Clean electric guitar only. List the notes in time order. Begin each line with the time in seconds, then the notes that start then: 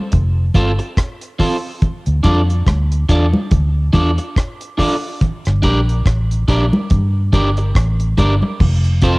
0.55 C4 F4 A4 C5
0.79 muted clean electric guitar stroke
1.39 C4 F4 A4 C5
2.23 D4 F4 A4 D5
3.09 D4 F4 A4 D5
3.93 D4 F4 A4 D5
4.18 muted clean electric guitar stroke
4.78 D4 F4 A4 D5
5.62 D4 G4 A#4 D5
6.48 D4 G4 A#4 D5
7.33 D4 G4 A#4 D5
7.58 muted clean electric guitar stroke
8.18 D4 G4 A#4 D5
8.43 muted clean electric guitar stroke
9.02 C4 F4 A4 C5